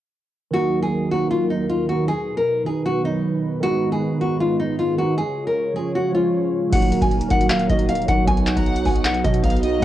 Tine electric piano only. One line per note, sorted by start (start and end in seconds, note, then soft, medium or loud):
0.51 0.97 D#3 loud
0.51 0.97 F#3 medium
0.51 0.98 A#3 medium
0.56 0.99 D#4 loud
1.09 1.69 D#3 medium
1.09 1.70 F#3 medium
1.09 1.71 A#3 medium
1.14 1.72 D#4 medium
1.86 2.07 D#3 medium
1.86 2.08 F#3 medium
1.86 2.09 A#3 medium
1.92 2.10 D#4 medium
2.64 2.95 D#3 medium
2.64 2.96 F#3 medium
2.64 2.96 B3 medium
2.69 2.97 D#4 medium
3.02 3.48 D#3 medium
3.02 3.49 F#3 medium
3.02 3.50 B3 medium
3.08 3.51 D#4 medium
3.60 4.06 D#3 medium
3.60 4.07 G#3 medium
3.60 4.08 B3 medium
3.66 4.09 D#4 loud
4.18 4.79 D#3 medium
4.18 4.80 G#3 medium
4.18 4.81 B3 medium
4.24 4.82 D#4 medium
4.96 5.17 D#3 medium
4.96 5.17 G#3 medium
4.96 5.18 B3 medium
5.01 5.19 D#4 medium
5.73 6.04 F3 medium
5.73 6.05 G#3 medium
5.73 6.06 C#4 medium
5.79 6.07 F4 medium
6.12 6.58 F3 medium
6.12 6.59 G#3 medium
6.12 6.60 C#4 medium
6.17 6.60 F4 medium
6.70 7.16 F#3 loud
6.70 7.17 A#3 medium
6.70 7.18 D#4 medium
6.75 7.19 F#4 loud
7.28 7.59 F#3 medium
7.28 7.60 A#3 medium
7.28 7.61 D#4 medium
7.34 7.62 F#4 medium
7.67 7.98 F#3 medium
7.67 7.99 A#3 medium
7.67 8.00 D#4 medium
7.72 8.01 F#4 medium
8.06 8.22 F#3 medium
8.06 8.23 A#3 medium
8.06 8.24 D#4 medium
8.11 8.24 F#4 medium
8.25 8.71 F#3 loud
8.25 8.72 B3 loud
8.25 8.72 D#4 medium
8.30 8.73 F#4 loud
8.83 9.44 F#3 medium
8.83 9.45 B3 medium
8.83 9.45 D#4 medium
8.88 9.46 F#4 medium
9.60 9.77 F#3 medium
9.60 9.77 B3 medium
9.60 9.78 D#4 medium
9.66 9.79 F#4 medium
9.80 9.85 G#3 loud
9.80 9.85 B3 medium